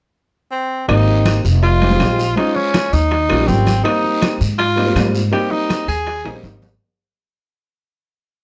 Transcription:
0.51 0.86 C4 medium
0.88 1.41 G#1 medium
0.88 1.40 A#3 medium
0.88 1.41 C4 medium
0.88 1.40 D#4 medium
0.88 1.41 D#4 medium
0.88 1.41 G4 medium
0.88 high bongo medium
0.88 high conga soft
0.88 high timbale medium
0.88 long guiro medium
0.88 claves medium
1.07 high bongo soft
1.07 high conga soft
1.26 high bongo medium
1.26 high conga medium
1.26 high timbale medium
1.26 short guiro medium
1.26 claves medium
1.44 1.96 F1 medium
1.44 high bongo soft
1.44 short guiro medium
1.63 2.33 F4 medium
1.63 high bongo medium
1.63 high conga soft
1.63 high timbale medium
1.63 long guiro medium
1.81 1.88 G#3 medium
1.81 1.88 C4 medium
1.81 1.88 D#4 medium
1.81 1.89 G4 medium
1.81 high conga soft
1.81 high timbale medium
1.90 2.23 G#3 medium
1.90 2.23 C4 medium
1.90 2.23 D#4 medium
1.90 2.24 G4 medium
2.00 2.33 A#1 medium
2.00 high bongo soft
2.00 low bongo medium
2.00 high conga medium
2.00 high timbale medium
2.00 low timbale medium
2.00 short guiro medium
2.00 claves medium
2.19 high bongo soft
2.19 high conga soft
2.19 short guiro medium
2.36 2.88 G#3 medium
2.36 2.89 C#4 medium
2.36 2.57 D#4 medium
2.36 2.89 F4 medium
2.36 2.89 C5 medium
2.36 high bongo medium
2.36 high conga soft
2.36 high timbale medium
2.36 long guiro medium
2.55 2.94 C#4 medium
2.55 high bongo soft
2.55 high conga soft
2.74 high bongo medium
2.74 high conga medium
2.74 high timbale medium
2.74 short guiro medium
2.74 claves medium
2.93 3.27 D#2 medium
2.93 3.49 D#4 loud
2.93 high bongo soft
2.93 high conga soft
2.93 short guiro medium
3.11 high bongo medium
3.11 high conga soft
3.11 high timbale medium
3.11 long guiro medium
3.29 3.47 A#1 medium
3.29 3.36 G3 medium
3.29 3.36 A#3 medium
3.29 3.37 C#4 medium
3.29 3.37 F4 medium
3.29 high conga soft
3.29 high timbale medium
3.29 claves medium
3.38 3.71 G3 medium
3.38 3.71 A#3 medium
3.38 3.71 C#4 medium
3.38 3.72 F4 medium
3.47 3.81 G#1 medium
3.47 3.83 C4 medium
3.47 high bongo soft
3.47 low bongo medium
3.47 high conga medium
3.47 short guiro medium
3.67 high bongo soft
3.67 high conga medium
3.67 high timbale medium
3.67 short guiro medium
3.83 4.36 G3 medium
3.83 4.36 A#3 medium
3.83 4.37 C4 medium
3.83 4.36 D#4 medium
3.83 4.37 D#4 medium
3.83 high bongo medium
3.83 high conga soft
3.83 high timbale medium
3.83 long guiro medium
3.83 claves medium
4.04 high bongo soft
4.04 high conga soft
4.22 high bongo medium
4.22 high conga medium
4.22 high timbale medium
4.22 short guiro medium
4.22 claves medium
4.41 4.92 G#2 medium
4.41 high bongo soft
4.41 short guiro medium
4.58 5.02 F4 loud
4.58 high bongo medium
4.58 high conga soft
4.58 high timbale medium
4.58 long guiro medium
4.76 4.83 G3 medium
4.76 4.84 A#3 medium
4.76 4.84 C4 medium
4.76 4.84 D#4 medium
4.76 high conga soft
4.76 high timbale medium
4.86 5.19 G3 medium
4.86 5.19 A#3 medium
4.86 5.19 C4 medium
4.86 5.19 F4 medium
4.95 5.28 G#2 medium
4.95 high bongo soft
4.95 low bongo medium
4.95 high conga medium
4.95 high timbale medium
4.95 low timbale medium
4.95 short guiro medium
4.95 claves medium
5.14 high bongo soft
5.14 high conga soft
5.14 short guiro medium
5.32 5.84 G3 medium
5.32 5.84 A#3 medium
5.32 5.85 C4 medium
5.32 5.85 D#4 medium
5.32 5.53 G4 medium
5.32 high bongo medium
5.32 high conga soft
5.32 high timbale medium
5.32 long guiro medium
5.51 5.88 D#4 loud
5.51 high bongo soft
5.51 high conga soft
5.69 high bongo medium
5.69 high conga loud
5.69 high timbale medium
5.69 short guiro medium
5.69 claves medium
5.88 6.22 D#2 medium
5.88 6.40 G#4 loud
5.88 high bongo soft
5.88 high conga soft
5.88 short guiro medium
6.06 high bongo medium
6.06 high conga soft
6.06 high timbale medium
6.06 long guiro medium
6.25 6.42 A#1 medium
6.25 6.31 G3 medium
6.25 6.32 A#3 medium
6.25 6.32 C4 medium
6.25 6.32 D#4 medium
6.25 high conga soft
6.25 high timbale medium
6.25 claves medium
6.34 6.67 G3 medium
6.34 6.67 A#3 medium
6.34 6.67 C4 medium
6.34 6.67 D#4 medium
6.43 6.76 G#1 medium
6.43 high bongo soft
6.43 low bongo medium
6.43 high conga medium
6.43 high timbale medium
6.43 short guiro medium
6.62 high bongo soft
6.62 high conga medium
6.62 low timbale medium
6.62 short guiro medium

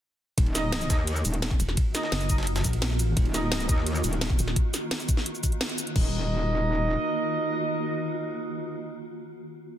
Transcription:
0.38 0.89 D#1 loud
0.38 5.92 D#3 medium
0.38 5.92 A#3 medium
0.38 5.92 F4 medium
0.38 5.92 F#4 medium
0.38 kick loud
0.38 closed hi-hat loud
0.38 ride medium
0.46 ride soft
0.55 0.88 D#4 medium
0.55 0.88 A#4 medium
0.55 0.88 D#5 loud
0.55 snare medium
0.55 closed hi-hat medium
0.55 ride medium
0.55 cabasa medium
0.72 snare loud
0.72 closed hi-hat medium
0.72 ride medium
0.81 closed hi-hat soft
0.81 cabasa soft
0.90 1.23 D#2 loud
0.90 0.96 D#4 medium
0.90 0.96 A#4 medium
0.90 0.96 D#5 loud
0.90 kick loud
0.90 snare loud
0.90 closed hi-hat medium
0.90 ride medium
0.90 cabasa medium
1.07 closed hi-hat medium
1.07 ride medium
1.16 cabasa soft
1.25 1.58 D#1 loud
1.25 closed hi-hat medium
1.25 ride medium
1.25 cabasa medium
1.34 closed hi-hat soft
1.42 snare loud
1.42 closed hi-hat medium
1.42 ride medium
1.51 kick loud
1.51 ride soft
1.60 1.76 D#1 loud
1.60 closed hi-hat medium
1.60 ride medium
1.60 cabasa medium
1.69 snare soft
1.77 kick loud
1.77 closed hi-hat medium
1.77 ride medium
1.95 2.27 D#4 medium
1.95 2.27 A#4 medium
1.95 2.27 D#5 loud
1.95 snare medium
1.95 closed hi-hat medium
1.95 ride medium
1.95 cabasa medium
2.03 snare medium
2.12 2.63 F#1 loud
2.12 snare loud
2.12 closed hi-hat medium
2.12 ride medium
2.21 closed hi-hat soft
2.21 cabasa soft
2.30 2.36 D#4 medium
2.30 2.36 A#4 medium
2.30 2.36 D#5 loud
2.30 kick loud
2.30 closed hi-hat medium
2.30 ride medium
2.30 cabasa medium
2.38 snare medium
2.38 ride medium
2.43 snare medium
2.43 ride medium
2.47 closed hi-hat medium
2.47 ride medium
2.56 snare loud
2.56 ride medium
2.56 cabasa soft
2.64 3.15 A#1 loud
2.64 kick medium
2.64 snare soft
2.64 closed hi-hat medium
2.64 cabasa medium
2.73 closed hi-hat soft
2.73 ride medium
2.82 snare loud
2.82 closed hi-hat medium
2.82 ride medium
2.91 snare medium
2.99 closed hi-hat medium
2.99 ride medium
2.99 cabasa medium
3.17 3.68 D#1 loud
3.17 kick loud
3.17 closed hi-hat medium
3.17 ride medium
3.25 ride soft
3.34 3.67 D#4 medium
3.34 3.67 A#4 medium
3.34 3.67 D#5 loud
3.34 snare soft
3.34 closed hi-hat medium
3.34 ride medium
3.34 cabasa medium
3.52 snare loud
3.52 closed hi-hat medium
3.52 ride medium
3.60 closed hi-hat soft
3.60 cabasa soft
3.69 4.03 D#2 loud
3.69 3.75 D#4 loud
3.69 3.75 A#4 medium
3.69 3.75 D#5 loud
3.69 kick loud
3.69 closed hi-hat medium
3.69 ride medium
3.69 cabasa medium
3.78 snare soft
3.87 closed hi-hat medium
3.87 ride medium
3.95 cabasa soft
4.04 4.37 D#1 loud
4.04 closed hi-hat medium
4.04 ride medium
4.04 cabasa medium
4.13 closed hi-hat soft
4.21 snare loud
4.21 closed hi-hat medium
4.21 ride medium
4.30 kick loud
4.30 ride soft
4.39 4.55 D#1 loud
4.39 closed hi-hat medium
4.39 ride medium
4.39 cabasa medium
4.48 snare soft
4.56 kick loud
4.56 closed hi-hat medium
4.74 snare soft
4.74 closed hi-hat medium
4.74 cabasa medium
4.91 snare loud
4.91 closed hi-hat medium
5.00 closed hi-hat soft
5.00 cabasa soft
5.09 kick loud
5.09 closed hi-hat medium
5.09 cabasa medium
5.17 snare soft
5.26 closed hi-hat medium
5.35 cabasa soft
5.43 kick medium
5.43 closed hi-hat medium
5.43 cabasa medium
5.52 closed hi-hat soft
5.61 snare loud
5.61 closed hi-hat medium
5.70 closed hi-hat soft
5.78 closed hi-hat medium
5.78 cabasa medium
5.87 closed hi-hat soft
5.96 6.96 D#1 loud
5.96 9.03 D#3 medium
5.96 9.03 A#3 medium
5.96 9.03 D#4 loud
5.96 9.03 F4 medium
5.96 9.03 F#4 medium
5.96 9.03 A#4 medium
5.96 9.03 D#5 loud
5.96 kick loud
5.96 crash medium

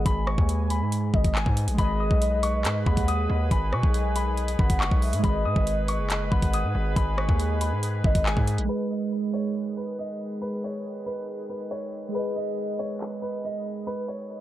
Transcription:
0.00 1.72 G#3 medium
0.00 1.74 G#4 medium
0.00 1.75 B4 medium
0.00 1.77 D#5 medium
0.06 0.37 G#1 loud
0.06 1.10 G#5 loud
0.06 0.24 B5 loud
0.06 kick loud
0.06 closed hi-hat medium
0.27 0.68 C#6 medium
0.27 cross-stick medium
0.38 0.83 D#2 loud
0.38 kick loud
0.49 closed hi-hat medium
0.70 1.31 B5 medium
0.70 closed hi-hat medium
0.81 1.12 G#2 loud
0.92 closed hi-hat medium
1.14 1.45 G#1 loud
1.14 1.34 D#5 medium
1.14 kick loud
1.24 kick loud
1.24 closed hi-hat medium
1.35 1.76 G#5 medium
1.35 clap loud
1.46 1.69 G#2 loud
1.46 kick loud
1.57 closed hi-hat medium
1.68 1.78 A#1 loud
1.68 closed hi-hat medium
1.74 5.17 G#3 medium
1.74 5.19 G#4 medium
1.78 2.10 G#1 loud
1.78 5.20 D#3 medium
1.78 8.65 B3 medium
1.78 5.20 G#4 medium
1.78 5.20 B4 medium
1.78 5.21 B4 medium
1.78 2.82 D#5 loud
1.78 1.97 B5 loud
1.78 kick loud
1.78 closed hi-hat medium
1.84 5.22 D#5 medium
2.00 2.41 D#6 medium
2.11 2.66 B1 loud
2.11 kick medium
2.22 closed hi-hat medium
2.43 2.84 C#6 medium
2.43 closed hi-hat medium
2.65 2.85 G#2 loud
2.65 clap loud
2.65 closed hi-hat medium
2.86 3.28 D#2 loud
2.86 3.47 F#5 loud
2.86 3.05 B5 medium
2.86 kick loud
2.97 kick loud
2.97 closed hi-hat medium
3.08 3.49 D#6 medium
3.08 closed hi-hat medium
3.30 3.50 D#2 loud
3.51 3.74 G#1 loud
3.51 4.55 G#5 loud
3.51 3.70 B5 loud
3.51 kick loud
3.51 closed hi-hat medium
3.73 3.83 B2 loud
3.73 4.14 C#6 medium
3.73 cross-stick medium
3.83 4.56 B1 loud
3.83 kick medium
3.94 closed hi-hat medium
4.16 4.56 B5 medium
4.16 closed hi-hat medium
4.37 closed hi-hat soft
4.48 closed hi-hat medium
4.59 4.82 G#1 loud
4.59 4.99 F#5 medium
4.59 4.78 B5 medium
4.59 kick loud
4.70 kick loud
4.70 closed hi-hat medium
4.80 4.91 F#1 loud
4.80 5.21 C#6 medium
4.80 clap loud
4.91 5.14 B1 loud
4.91 kick loud
5.02 5.23 E5 medium
5.02 open hi-hat medium
5.13 5.23 G#2 loud
5.13 closed hi-hat medium
5.19 8.63 G#3 medium
5.19 8.64 G#4 medium
5.24 5.47 G#1 loud
5.24 8.66 D#3 medium
5.24 8.66 G#4 medium
5.24 8.66 B4 medium
5.24 6.28 D#5 loud
5.24 5.43 B5 loud
5.24 kick loud
5.24 closed hi-hat medium
5.29 8.68 D#5 medium
5.45 5.56 G#2 loud
5.45 5.86 D#6 medium
5.56 6.01 G#1 loud
5.56 kick medium
5.67 closed hi-hat medium
5.88 6.29 C#6 medium
5.88 closed hi-hat medium
5.99 6.30 F#1 loud
6.10 clap loud
6.10 closed hi-hat medium
6.31 6.66 G#1 loud
6.31 6.93 F#5 medium
6.31 6.50 B5 medium
6.31 kick loud
6.42 kick loud
6.42 closed hi-hat medium
6.53 6.94 D#6 medium
6.53 closed hi-hat medium
6.64 6.74 G#2 loud
6.75 6.96 G#1 loud
6.96 7.28 G#1 loud
6.96 8.00 G#5 loud
6.96 7.15 B5 loud
6.96 kick loud
6.96 closed hi-hat medium
7.18 7.58 C#6 medium
7.18 cross-stick loud
7.29 7.73 D#2 loud
7.29 kick loud
7.40 closed hi-hat medium
7.61 8.22 B5 medium
7.61 closed hi-hat medium
7.72 8.03 G#2 loud
7.83 closed hi-hat medium
8.04 8.35 G#1 loud
8.04 8.25 D#5 medium
8.04 kick loud
8.15 kick loud
8.15 closed hi-hat medium
8.26 8.66 G#5 medium
8.26 clap loud
8.37 8.60 G#2 loud
8.37 kick loud
8.47 closed hi-hat medium
8.58 8.69 A#1 loud
8.58 closed hi-hat medium
8.65 12.07 G#3 medium
8.65 12.10 G#4 medium
8.69 14.41 D#3 medium
8.69 8.88 B4 loud
8.69 12.12 B4 medium
8.69 closed hi-hat medium
8.75 12.13 D#5 medium
8.91 9.31 D#5 medium
9.12 closed hi-hat medium
9.34 9.74 C#5 medium
9.34 closed hi-hat medium
9.55 closed hi-hat medium
9.77 9.96 B4 medium
9.88 closed hi-hat medium
9.99 10.39 D#5 medium
9.99 closed hi-hat medium
10.42 10.61 B4 loud
10.42 closed hi-hat medium
10.64 11.04 C#5 medium
10.85 closed hi-hat medium
11.06 11.47 B4 medium
11.06 closed hi-hat medium
11.28 closed hi-hat soft
11.39 closed hi-hat medium
11.49 11.68 B4 medium
11.60 closed hi-hat medium
11.71 12.12 C#5 medium
11.93 closed hi-hat medium
12.04 closed hi-hat medium
12.09 14.41 G#3 medium
12.09 14.41 G#4 medium
12.14 14.41 B3 medium
12.14 12.33 B4 loud
12.14 14.41 B4 medium
12.14 closed hi-hat medium
12.19 14.41 D#5 medium
12.36 12.77 D#5 medium
12.58 closed hi-hat medium
12.79 13.20 C#5 medium
12.79 closed hi-hat medium
13.01 clap loud
13.01 closed hi-hat medium
13.22 13.41 B4 medium
13.33 closed hi-hat medium
13.44 13.85 D#5 medium
13.44 closed hi-hat medium
13.87 14.06 B4 loud
13.87 closed hi-hat medium
14.08 14.41 C#5 medium
14.30 closed hi-hat medium

